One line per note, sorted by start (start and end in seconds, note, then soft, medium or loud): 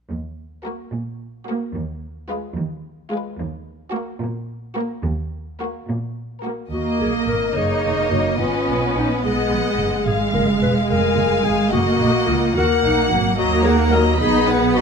0.09 0.76 D#2 soft
0.63 0.85 A#3 soft
0.63 0.85 F#4 soft
0.63 0.84 A#4 soft
0.92 1.58 A#2 soft
1.47 1.68 A#3 soft
1.47 1.68 F#4 soft
1.47 1.68 A#4 soft
1.75 2.41 D#2 soft
2.29 2.50 G#3 soft
2.29 2.50 F4 soft
2.29 2.50 B4 soft
2.56 3.22 D#2 soft
3.11 3.32 G#3 soft
3.11 3.32 F4 soft
3.11 3.32 B4 soft
3.39 4.05 D#2 medium
3.92 4.13 A#3 soft
3.92 4.13 F#4 medium
3.92 4.14 A#4 soft
4.21 4.87 A#2 medium
4.76 4.96 A#3 soft
4.76 4.96 F#4 soft
4.76 4.96 A#4 soft
5.03 5.70 D#2 medium
5.59 5.80 A#3 soft
5.59 5.80 F#4 soft
5.59 5.80 A#4 soft
5.88 6.56 A#2 soft
6.43 6.66 A#3 soft
6.43 6.65 F#4 soft
6.43 6.65 A#4 soft
6.72 6.99 D#2 soft
6.72 7.52 A#3 soft
6.72 6.99 F#4 soft
6.72 9.20 D#5 soft
6.72 7.53 D#5 soft
7.01 7.27 B1 soft
7.01 7.13 G#4 soft
7.28 7.55 G#1 soft
7.28 7.58 A#4 medium
7.55 7.82 F#1 soft
7.55 8.37 A#3 soft
7.55 8.40 D#4 soft
7.55 8.13 G#4 medium
7.55 8.39 C#5 soft
7.85 8.10 F1 soft
8.11 8.38 F#1 soft
8.11 8.38 F#4 soft
8.39 8.66 G#1 soft
8.39 9.25 B3 soft
8.39 9.23 C#4 soft
8.39 8.95 F4 soft
8.39 9.22 B4 soft
8.68 8.94 B1 soft
8.97 9.23 A#1 soft
8.97 9.11 D#4 medium
9.24 9.50 B1 soft
9.24 10.06 G#3 soft
9.24 10.06 B3 soft
9.24 10.06 G#4 medium
9.24 10.08 D#5 soft
9.24 10.08 F#5 soft
9.52 9.78 A#1 soft
9.79 10.05 F#1 soft
10.06 10.32 G#1 soft
10.06 11.69 G#3 soft
10.06 10.19 G#4 medium
10.06 10.90 F5 soft
10.06 10.89 F5 soft
10.34 10.60 F#1 medium
10.34 10.47 A#4 medium
10.61 10.87 E1 soft
10.61 10.74 B4 medium
10.89 11.15 F1 soft
10.89 11.46 A#4 medium
10.89 11.71 F5 soft
10.89 11.71 G#5 soft
11.16 11.43 F#1 soft
11.45 11.70 G#1 soft
11.45 11.72 G#4 medium
11.72 11.98 F#1 medium
11.72 12.56 A#3 soft
11.72 12.57 A#3 soft
11.72 12.29 F#4 medium
11.72 12.57 D#5 soft
11.72 12.55 F#5 soft
12.00 12.26 A#1 medium
12.28 12.55 C#2 soft
12.28 12.56 F4 medium
12.55 12.82 D#2 medium
12.55 13.38 A#3 soft
12.55 12.64 F#4 medium
12.55 13.11 A#4 medium
12.55 13.37 F#5 soft
12.55 13.38 F#5 soft
12.83 13.09 B1 medium
12.83 13.11 D#4 medium
13.11 13.37 G#1 medium
13.11 13.38 F#3 soft
13.38 14.17 D#2 medium
13.38 13.64 F#3 soft
13.38 14.19 A#3 medium
13.38 13.64 F#4 medium
13.38 13.64 D#5 soft
13.38 13.65 A#5 soft
13.65 13.93 A#3 soft
13.65 13.77 G#4 medium
13.65 13.94 A#4 soft
13.65 13.94 F#5 soft
13.91 14.20 F#3 soft
13.91 14.04 A#4 medium
13.91 14.19 D#5 soft
13.91 14.22 A#5 soft
14.19 14.81 B1 medium
14.19 14.81 B3 medium
14.19 14.46 D#4 soft
14.19 14.76 G#4 medium
14.19 14.46 D#5 medium
14.19 14.46 B5 soft
14.48 14.76 B3 soft
14.48 14.76 B4 soft
14.48 14.76 F#5 soft
14.75 14.81 D#4 soft
14.75 14.81 F#4 medium
14.75 14.81 D#5 soft
14.75 14.81 B5 soft